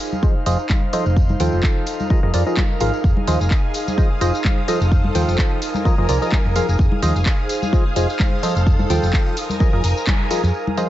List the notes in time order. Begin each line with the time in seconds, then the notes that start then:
Already playing: D#4 G#4 C5 F5
0.12 tambourine, high conga
0.23 F3 F4 G#4 C5 D#5, kick, tambourine
0.46 F1 F3 F4 G#4 C5 D#5, open hi-hat, tambourine
0.59 tambourine
0.69 kick, clap, tambourine, high conga
0.93 F3 F4 A4 C5 D#5, open hi-hat, tambourine
1.06 F1, tambourine
1.17 kick, tambourine
1.29 tambourine, high conga
1.36 A4
1.40 D#2 F3 F4 A4 C5 G5, open hi-hat, tambourine
1.52 F1, tambourine
1.63 kick, clap, tambourine
1.86 open hi-hat, tambourine
2.00 tambourine, high conga
2.10 F3 F4 G#4 A#4 D#5, kick, tambourine
2.23 F1 F3 F4 G#4 A#4 D#5
2.34 F2 F3 F4 G#4 A#4 D5, open hi-hat, tambourine
2.40 A#4
2.47 F3 F4 G#4 A#4 D#5, tambourine
2.57 kick, clap, tambourine, high conga
2.80 G#1 F3 F4 G#4 A#4 F5, open hi-hat, tambourine
2.94 tambourine
3.04 F1 G#4 F5 D#6, kick, tambourine
3.17 high conga
3.27 D#2 F3 F4 G#4 C5 D#5, open hi-hat, tambourine
3.40 F1, tambourine
3.51 kick, clap, tambourine
3.58 C5
3.74 open hi-hat, tambourine
3.88 tambourine, high conga
3.98 F3 F4 G#4 C5 D#5, kick, tambourine
4.21 F1 F3 F4 G#4 C5 D#5, open hi-hat, tambourine
4.34 tambourine
4.44 kick, clap, tambourine, high conga
4.68 F3 F4 A4 C5 D#5, open hi-hat, tambourine
4.78 F1 A4, tambourine
4.92 kick, tambourine
5.04 high conga
5.15 D#2 F3 F4 A4 C5 G5, open hi-hat, tambourine
5.28 F1, tambourine
5.38 kick, clap, tambourine
5.62 A#4 G#5, open hi-hat, tambourine
5.74 tambourine, high conga
5.75 tambourine
5.85 F3 F4 G#4 A#4 D#5, kick, tambourine
5.98 F1 F3 F4 G#4 A#4 D#5
6.09 C2 F3 F4 G#4 A#4 D5, open hi-hat, tambourine
6.22 F3 F4 G#4 A#4 D#5, tambourine
6.32 kick, clap, tambourine, high conga
6.45 F1
6.56 F3 F4 G#4 A#4 F5, open hi-hat, tambourine
6.68 F1, tambourine
6.78 F1 G#4 F5 D#6, kick, tambourine
6.80 tambourine
6.92 high conga
6.96 C5
7.02 D#2 F3 F4 G#4 C5 D#5, open hi-hat, tambourine
7.15 F1, tambourine
7.26 kick, clap, tambourine
7.49 open hi-hat, tambourine
7.62 tambourine, high conga
7.73 F3 F4 G#4 C5 D#5, kick, tambourine
7.96 F1 F3 F4 G#4 C5 D#5, open hi-hat, tambourine
8.09 tambourine
8.20 kick, clap, tambourine, high conga
8.43 F3 F4 A4 C5 D#5, open hi-hat, tambourine
8.49 A4
8.55 F1, tambourine
8.57 tambourine
8.67 kick, tambourine
8.79 tambourine, high conga
8.90 D#2 F3 F4 A4 C5 G5, open hi-hat, tambourine
9.03 F1, tambourine
9.13 kick, clap, tambourine
9.26 tambourine
9.37 A#4 G#5, open hi-hat, tambourine
9.50 tambourine, high conga
9.60 F3 F4 G#4 A#4 D#5, kick, tambourine
9.70 F1 F3 F4 G#4 A#4 D#5
9.84 F1, open hi-hat, tambourine
9.90 A#4
9.96 tambourine
10.07 kick, clap, tambourine, high conga
10.30 F3 F4 G#4 A#4 D#5, open hi-hat, tambourine
10.43 F2, tambourine
10.54 G#4 F5 D#6, tambourine
10.67 high conga
10.77 F3 F4 G#4 C5 D#5, open hi-hat, tambourine